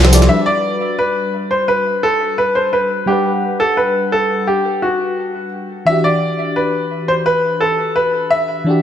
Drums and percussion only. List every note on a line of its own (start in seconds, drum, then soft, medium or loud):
0.05 snare soft
0.05 closed hi-hat soft
0.13 closed hi-hat medium
0.13 open hi-hat medium
0.13 tambourine medium
0.22 snare soft
0.22 tambourine soft